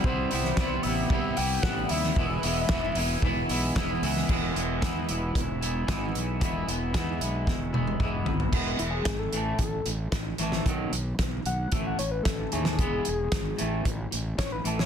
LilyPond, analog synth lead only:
\new Staff \with { instrumentName = "Analog synth lead" } { \time 4/4 \key e \major \tempo 4 = 113 c''8 c''4 e''4 g''8 fis''8 e''8~ | e''2. r4 | r1 | r1 |
r8 e'16 gis'8 a'8. a'8 r4. | r4. fis''8 e''16 fis''16 cis''16 b'16 a'8 gis'8~ | gis'2~ gis'8 r8 cis''16 b'16 a'16 cis''16 | }